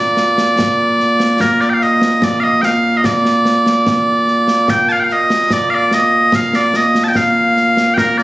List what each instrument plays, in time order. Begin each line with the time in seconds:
Already playing: bagpipes A#2 A#3 D5
0.17 snare
0.38 snare
0.59 concert bass drum, snare
1.00 snare
1.20 snare
1.40 bagpipes A#4, concert bass drum, snare
1.61 bagpipes D5, snare
1.70 bagpipes G5
1.74 bagpipes F5
1.81 bagpipes D#5, snare
2.01 snare
2.22 bagpipes D5, concert bass drum, snare
2.40 bagpipes D#5 F5
2.62 bagpipes F5 G5, snare
2.97 bagpipes D#5
3.04 bagpipes D5, concert bass drum, snare
3.25 snare
3.45 snare
3.66 snare
3.86 concert bass drum, snare
4.28 snare
4.48 snare
4.68 bagpipes G5, concert bass drum, snare
4.89 bagpipes F5 A5, snare
5.00 bagpipes G5
5.04 bagpipes F5
5.10 bagpipes D#5, snare
5.30 snare
5.50 bagpipes D5, concert bass drum, snare
5.70 bagpipes F5
5.74 bagpipes D5
5.91 bagpipes D#5, snare
6.32 bagpipes F5, concert bass drum, snare
6.53 bagpipes D5, snare
6.74 bagpipes D#5, snare
6.95 snare
7.04 bagpipes A5
7.08 bagpipes G5
7.15 bagpipes F5, concert bass drum, snare
7.56 snare
7.77 snare
7.94 bagpipes A#4 G5, concert bass drum, snare
8.18 bagpipes D5, snare